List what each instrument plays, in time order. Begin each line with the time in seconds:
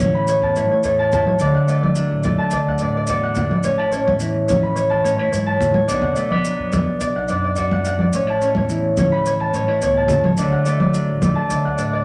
Already playing: clean electric guitar A2 E3 E4, harp F#5 A5
0.00 upright bass E2, clean electric guitar C#4, harp C#5, high conga, low conga, maracas
0.15 harp B5
0.27 harp C#5, maracas
0.42 upright bass E2, harp A5
0.56 clean electric guitar A2 E4, harp C#5, maracas
0.70 upright bass A2, harp C#5
0.83 upright bass E2, clean electric guitar A4, harp C#5, maracas
0.99 harp A5
1.12 clean electric guitar E4, harp A5, low conga, maracas
1.27 harp C#5, high conga
1.39 upright bass D2, clean electric guitar D3 D4, harp D5, maracas
1.54 upright bass D3, harp F#5
1.68 clean electric guitar A3, harp D5, maracas
1.83 harp D5, high conga
1.95 clean electric guitar F#3 D4, maracas
2.11 upright bass A1
2.23 clean electric guitar A3, harp D5, high conga, low conga, maracas
2.38 harp A5
2.51 upright bass D3, harp D5, maracas
2.67 upright bass D2, harp F#5
2.78 clean electric guitar A2, harp D5, maracas
2.82 clean electric guitar D4
2.97 harp D5
3.07 upright bass E2, clean electric guitar F#4, harp D5, maracas
3.23 harp F#5
3.35 clean electric guitar D4, harp F#5, low conga, maracas
3.51 harp D5, high conga
3.63 upright bass A1, clean electric guitar A2 C#4, harp C#5, maracas
3.78 clean electric guitar E4, harp A5
3.92 clean electric guitar C#4, harp C#5, maracas
4.07 upright bass E2, harp C#5, high conga
4.20 clean electric guitar E3 E4, maracas
4.48 upright bass E2, clean electric guitar C#4, harp C#5, high conga, low conga, maracas
4.63 harp B5
4.76 harp C#5, maracas
4.90 upright bass E2, harp A5
5.04 clean electric guitar A2 C#4, harp C#5, maracas
5.18 upright bass A2, clean electric guitar E4, harp C#5
5.32 upright bass F#2, clean electric guitar G#2, harp C#5, maracas
5.46 harp A5
5.61 clean electric guitar A2, low conga, maracas
5.74 harp C#5, high conga
5.88 upright bass B1, clean electric guitar B2 F#3 B3 D4, harp D5, maracas
5.92 clean electric guitar F#4
6.02 upright bass B2, harp F#5, low conga
6.16 clean electric guitar A3, harp D5, maracas
6.31 clean electric guitar B3, harp D5, high conga
6.45 clean electric guitar F#3 D4, maracas
6.59 upright bass F#2
6.72 clean electric guitar B3, harp D5, high conga, low conga, maracas
7.00 upright bass B2, harp D5, maracas
7.15 upright bass B1, harp F#5
7.28 clean electric guitar F#2 D4, harp D5, maracas
7.44 harp D5
7.56 upright bass F#2, clean electric guitar F#4, harp D5, maracas
7.71 harp F#5, high conga
7.85 clean electric guitar D4, harp F#5, maracas
7.99 harp D5, high conga
8.13 upright bass A1, clean electric guitar A2 C#4, harp C#5, maracas
8.27 clean electric guitar E4, harp A5
8.41 clean electric guitar C#4, harp C#5, maracas
8.55 upright bass E2, harp C#5, high conga
8.69 clean electric guitar E3 E4, maracas
8.97 upright bass E2, clean electric guitar C#4, harp C#5, high conga, low conga, maracas
9.12 harp B5
9.26 harp C#5, maracas
9.40 upright bass E2, harp A5
9.53 clean electric guitar A2 C#4, harp C#5, maracas
9.67 upright bass A2, clean electric guitar E4, harp C#5
9.82 upright bass C#2, clean electric guitar B2, harp C#5, maracas
9.97 harp A5
10.08 clean electric guitar C#3, harp A5, low conga, maracas
10.24 harp C#5, high conga
10.37 upright bass D2, clean electric guitar D3 F#3 A3 D4 F#4, harp D5, maracas
10.52 upright bass D3, harp F#5
10.65 clean electric guitar A3, harp D5, maracas
10.80 harp D5, high conga
10.94 clean electric guitar F#3 D4, maracas
11.09 upright bass A1
11.22 clean electric guitar A3, harp D5, high conga, low conga, maracas
11.35 harp A5
11.50 upright bass D3, harp D5, maracas
11.65 upright bass D2, harp F#5
11.78 clean electric guitar A2 D4, harp D5, maracas
11.93 harp D5